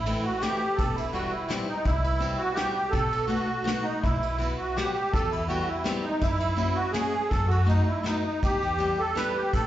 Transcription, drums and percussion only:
0.06 ride
0.42 snare, ride
0.78 kick, ride
0.98 ride
1.15 ride
1.50 snare, ride
1.85 kick, ride
2.04 ride
2.22 ride
2.57 snare, ride
2.93 kick, ride
3.12 ride
3.30 ride
3.67 snare, ride
4.04 kick, ride
4.23 ride
4.41 ride
4.78 snare, ride
5.14 kick, ride
5.33 ride
5.50 ride
5.85 snare, ride
6.21 kick, ride
6.40 ride
6.58 ride
6.94 snare, ride
7.31 kick, ride
7.51 ride
7.69 ride
8.06 snare, ride
8.43 kick, ride
8.62 ride
8.80 ride
9.17 snare, ride
9.53 kick, ride

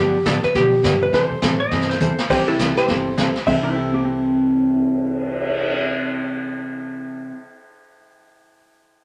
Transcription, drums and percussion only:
0.26 kick, snare, hi-hat pedal
0.43 snare
0.55 brush sweep, kick, snare
0.84 kick, snare, hi-hat pedal
1.13 brush sweep, kick, snare
1.42 kick, snare, hi-hat pedal
1.71 brush sweep, kick, snare
1.81 snare
1.91 snare
2.00 hi-hat pedal
2.18 snare
2.30 brush sweep, kick, snare, crash
2.59 kick, snare, hi-hat pedal
2.77 snare
2.88 brush sweep, kick, snare
3.17 kick, snare, hi-hat pedal
3.35 snare
3.47 kick, crash
3.65 cymbal swell

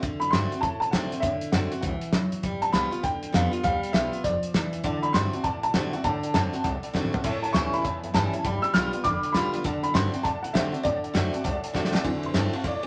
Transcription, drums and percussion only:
0.03 kick, closed hi-hat
0.22 closed hi-hat
0.33 snare, closed hi-hat
0.52 closed hi-hat
0.63 kick, closed hi-hat
0.82 closed hi-hat
0.93 kick, snare, closed hi-hat
1.12 closed hi-hat
1.23 kick, closed hi-hat
1.41 closed hi-hat
1.53 snare, closed hi-hat
1.72 closed hi-hat
1.83 kick, closed hi-hat
2.01 closed hi-hat
2.13 kick, snare, closed hi-hat
2.32 closed hi-hat
2.43 kick, closed hi-hat
2.62 closed hi-hat
2.74 snare, closed hi-hat
2.92 closed hi-hat
3.04 kick, snare, closed hi-hat
3.23 closed hi-hat
3.34 kick, snare, closed hi-hat
3.53 closed hi-hat
3.64 kick, closed hi-hat
3.83 closed hi-hat
3.94 snare, closed hi-hat
4.13 closed hi-hat
4.24 kick, snare, closed hi-hat
4.43 closed hi-hat
4.54 kick, snare, closed hi-hat
4.73 closed hi-hat
4.84 kick, closed hi-hat
5.03 closed hi-hat
5.14 snare, closed hi-hat
5.33 closed hi-hat
5.44 kick, closed hi-hat
5.63 closed hi-hat
5.74 kick, snare, closed hi-hat
5.93 closed hi-hat
6.04 kick, closed hi-hat
6.23 closed hi-hat
6.34 snare, closed hi-hat
6.54 closed hi-hat
6.64 kick, snare, closed hi-hat
6.83 closed hi-hat
6.95 kick, snare
7.05 mid tom
7.14 floor tom
7.24 kick, closed hi-hat, crash
7.44 closed hi-hat
7.54 snare, closed hi-hat
7.74 closed hi-hat
7.85 kick, closed hi-hat
8.04 closed hi-hat
8.15 kick, snare, closed hi-hat
8.33 closed hi-hat
8.45 kick, closed hi-hat
8.64 closed hi-hat
8.74 snare, closed hi-hat
8.93 closed hi-hat
9.04 kick, snare, closed hi-hat
9.23 closed hi-hat
9.35 kick, snare, closed hi-hat
9.54 closed hi-hat
9.64 kick, closed hi-hat
9.84 closed hi-hat
9.95 snare, closed hi-hat
10.14 closed hi-hat
10.25 kick, snare, closed hi-hat
10.44 closed hi-hat
10.55 kick, snare, closed hi-hat
10.74 closed hi-hat
10.85 kick, closed hi-hat
11.04 closed hi-hat
11.15 snare, closed hi-hat
11.34 closed hi-hat
11.45 kick, snare, closed hi-hat
11.64 closed hi-hat
11.75 kick, snare
11.85 snare
11.95 snare
12.05 kick, ride
12.23 ride
12.34 snare, ride
12.53 ride
12.64 kick, snare, ride
12.83 ride

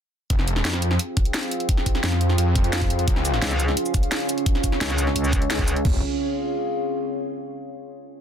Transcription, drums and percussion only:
0.30 kick, closed hi-hat
0.39 snare
0.47 closed hi-hat
0.56 snare
0.65 snare, closed hi-hat
0.73 snare
0.82 closed hi-hat
0.91 snare
0.99 closed hi-hat
1.17 kick, closed hi-hat
1.25 closed hi-hat
1.34 snare, closed hi-hat
1.43 closed hi-hat
1.51 closed hi-hat
1.60 closed hi-hat
1.69 kick, closed hi-hat
1.77 snare
1.86 kick, closed hi-hat
1.95 snare
2.04 snare, closed hi-hat
2.12 snare
2.21 closed hi-hat
2.30 snare
2.38 closed hi-hat
2.56 kick, closed hi-hat
2.64 closed hi-hat
2.73 snare, closed hi-hat
2.82 kick, closed hi-hat
2.90 closed hi-hat
2.99 closed hi-hat
3.08 kick, closed hi-hat
3.16 snare
3.25 closed hi-hat, shaker
3.34 snare
3.42 snare, closed hi-hat
3.51 snare, shaker
3.60 closed hi-hat, shaker
3.68 snare
3.77 closed hi-hat
3.86 shaker
3.94 kick, closed hi-hat, shaker
4.03 closed hi-hat
4.12 snare, closed hi-hat
4.20 closed hi-hat
4.29 closed hi-hat, shaker
4.38 closed hi-hat
4.46 kick, closed hi-hat
4.55 snare
4.64 kick, closed hi-hat, shaker
4.72 snare
4.81 snare, closed hi-hat
4.90 snare, shaker
4.98 closed hi-hat, shaker
5.07 snare
5.16 closed hi-hat
5.24 shaker
5.33 kick, closed hi-hat, shaker
5.42 closed hi-hat
5.50 snare, closed hi-hat
5.59 kick, closed hi-hat
5.68 closed hi-hat, shaker
5.76 closed hi-hat
5.85 kick, floor tom, crash

